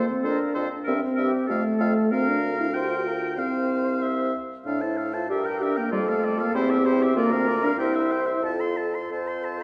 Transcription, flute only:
0.00 0.20 C5 medium
0.25 0.56 A#4 medium
0.57 0.64 A4 soft
0.87 0.94 A#4 medium
1.19 1.49 G4 medium
1.50 2.11 A4 medium
2.12 2.73 A#4 medium
2.74 3.05 C5 medium
3.06 3.13 A#4 soft
3.37 4.32 C5 medium
5.31 5.95 A#4 medium
5.94 6.57 A4 medium
6.55 7.18 G4 medium
7.17 7.79 A#4 medium
7.80 8.45 C5 medium
8.43 9.04 A4 soft
9.11 9.63 C5 medium

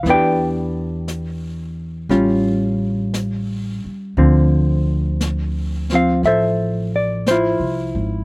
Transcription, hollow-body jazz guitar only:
0.03 2.09 E3 soft
0.07 2.10 B3 soft
0.07 2.11 D4 soft
0.07 2.09 B4 medium
0.07 2.09 D5 medium
0.07 2.09 G5 medium
0.14 2.15 G4 soft
2.10 4.18 G3 soft
2.10 4.18 C#4 soft
2.10 4.18 F4 soft
4.18 8.24 D3 soft
4.18 5.91 F3 soft
4.18 5.93 C4 soft
5.92 8.24 F3 soft
5.92 6.27 C4 soft
5.92 6.25 F5 medium
6.26 7.30 A4 soft
6.26 7.27 C5 soft
6.26 6.91 E5 medium
6.96 7.28 D5 medium
7.28 8.24 E4 medium
7.28 8.24 F4 medium
7.28 8.24 C5 medium

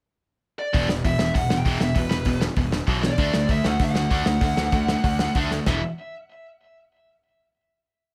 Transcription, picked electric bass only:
0.74 0.85 E1 medium
0.89 1.00 E1 medium
1.05 1.15 E1 medium
1.19 1.30 E1 medium
1.35 1.46 E1 medium
1.50 1.61 E1 medium
1.66 1.76 E1 medium
1.81 1.92 E1 loud
1.96 2.07 E1 medium
2.11 2.22 E1 medium
2.25 2.48 E1 medium
2.57 2.79 E1 medium
2.87 3.09 B1 medium
3.18 3.29 D2 loud
3.34 3.45 D2 loud
3.49 3.60 D2 medium
3.66 3.76 D2 loud
3.80 3.91 D2 medium
3.94 4.06 D2 medium
4.11 4.22 D2 medium
4.26 4.37 D2 medium
4.41 4.53 D2 loud
4.58 4.69 D2 medium
4.72 4.95 D2 medium
5.04 5.26 D2 loud
5.36 5.58 D2 medium
5.67 5.81 E1 loud

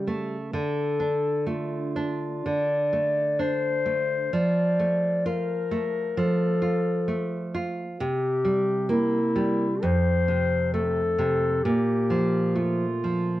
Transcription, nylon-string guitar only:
0.00 0.50 C#3 soft
0.00 0.36 G3 soft
0.07 0.53 A3 soft
0.53 2.41 D3 soft
1.00 1.75 D4 soft
1.47 2.26 A3 soft
1.96 2.74 D4 soft
2.46 4.29 D3 soft
2.93 3.67 A3 soft
3.39 4.14 D4 soft
3.86 4.33 A3 soft
4.33 6.13 F3 soft
4.79 5.53 A3 soft
5.26 5.99 F4 soft
5.71 6.44 A3 soft
6.17 7.96 F3 soft
6.62 7.36 F4 soft
7.08 7.82 A3 soft
7.55 8.00 F4 soft
8.00 9.79 C3 medium
8.45 9.17 G3 soft
8.89 9.64 A#3 soft
9.36 9.83 G3 soft
9.83 11.61 F2 medium
10.28 11.01 C3 soft
10.74 11.47 A3 soft
11.18 11.65 C3 soft
11.65 13.40 A#2 medium
12.10 12.85 F3 soft
12.56 13.34 A3 soft
13.04 13.40 F3 soft

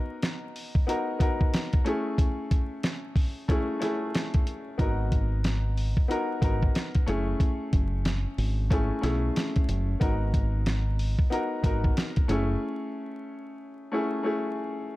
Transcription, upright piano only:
0.00 0.56 B3 medium
0.00 0.56 D#4 medium
0.00 0.57 F#4 medium
0.00 0.57 A#4 medium
0.87 1.14 B3 medium
0.87 1.14 D#4 medium
0.87 1.15 F#4 medium
0.87 1.15 A#4 medium
1.19 1.85 B3 medium
1.19 1.85 D#4 medium
1.19 1.86 F#4 medium
1.19 1.86 A#4 medium
1.84 2.91 A3 medium
1.84 2.91 C#4 medium
1.84 2.92 E4 medium
1.84 2.92 G#4 medium
3.48 3.75 A3 medium
3.48 3.75 C#4 medium
3.48 3.76 E4 medium
3.48 3.76 G#4 medium
3.79 4.57 A3 medium
3.79 4.57 C#4 medium
3.79 4.58 E4 medium
3.79 4.58 G#4 medium
4.78 5.78 B3 medium
4.78 5.78 D#4 medium
4.78 5.79 F#4 medium
4.78 5.79 A#4 medium
6.08 6.35 B3 medium
6.08 6.36 D#4 medium
6.08 6.36 F#4 medium
6.08 6.37 A#4 medium
6.41 7.07 B3 medium
6.41 7.07 D#4 medium
6.41 7.08 F#4 medium
6.41 7.08 A#4 medium
7.06 8.13 A3 medium
7.06 8.13 C#4 medium
7.06 8.14 E4 medium
7.06 8.14 G#4 medium
8.70 8.97 A3 medium
8.70 8.97 C#4 medium
8.70 8.98 E4 medium
8.70 8.98 G#4 medium
9.01 9.78 A3 medium
9.01 9.79 C#4 medium
9.01 9.79 E4 medium
9.01 9.80 G#4 medium
10.00 11.00 B3 medium
10.00 11.00 D#4 medium
10.00 11.01 F#4 medium
10.00 11.01 A#4 medium
11.30 11.57 B3 medium
11.30 11.58 D#4 medium
11.30 11.58 F#4 medium
11.30 11.59 A#4 medium
11.63 12.28 B3 medium
11.63 12.29 D#4 medium
11.63 12.29 F#4 medium
11.63 12.30 A#4 medium
12.28 13.34 A3 medium
12.28 13.35 C#4 medium
12.28 13.35 E4 medium
12.28 13.36 G#4 medium
13.92 14.18 A3 medium
13.92 14.19 C#4 medium
13.92 14.19 E4 medium
13.92 14.20 G#4 medium
14.23 14.96 A3 medium
14.23 14.96 C#4 medium
14.23 14.96 E4 medium
14.23 14.96 G#4 medium

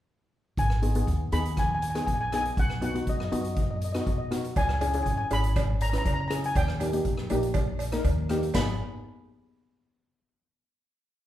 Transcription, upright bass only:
0.58 1.01 G#1 medium
1.08 1.29 D#2 medium
1.32 1.98 D#2 medium
2.08 2.51 A#1 medium
2.57 3.01 B1 medium
3.07 3.29 F#2 medium
3.32 3.97 F#2 medium
4.07 4.50 B2 medium
4.56 5.00 C#2 medium
5.06 5.28 G#1 medium
5.31 5.96 G#1 medium
6.06 6.49 C#3 medium
6.56 6.99 D#2 medium
7.05 7.27 A#1 medium
7.31 7.96 A#1 medium
8.04 8.49 D#2 medium
8.55 8.78 G#1 medium

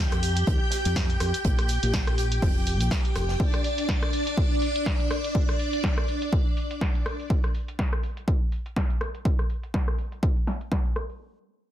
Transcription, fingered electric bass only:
0.12 0.43 F2 medium
0.47 0.58 D#2 medium
0.85 1.16 F2 medium
1.20 1.31 F2 medium
1.45 1.78 A#1 loud
1.83 2.01 A#1 loud
2.07 2.38 A#1 medium
2.42 2.80 F1 loud
2.80 2.88 A#1 medium
3.15 3.35 F1 medium

